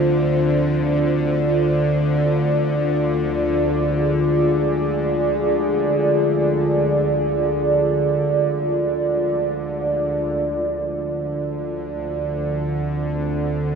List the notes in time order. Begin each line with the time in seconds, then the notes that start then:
Already playing: D2 D3 F4 C5 D5
2.78 G#4
10.39 D2 D3
11.85 C5